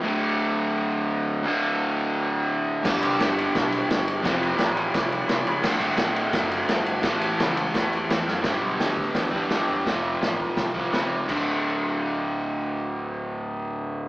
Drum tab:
CC |--------|--------|x-------|--------|
RD |--------|--------|-xxxxxxx|xxxxxxxx|
HH |--------|--------|--------|--------|
SD |--------|--------|o-o-o-o-|o-o-o-o-|
BD |--------|--------|o---o---|o---o---|

CC |x-------|--------|--------|--------|
RD |-xxxxxxx|xxxxxxx-|--------|--------|
HH |--------|--------|o-o-o-o-|o-o-o-o-|
SD |o-o-o-o-|o-o-o-oo|o-o-o-o-|o-o-o-o-|
BD |o---o---|o---o---|o--ooo--|o--ooo--|

CC |x-------|--------|
RD |--------|--------|
HH |--------|--------|
SD |--------|--------|
BD |o-------|--------|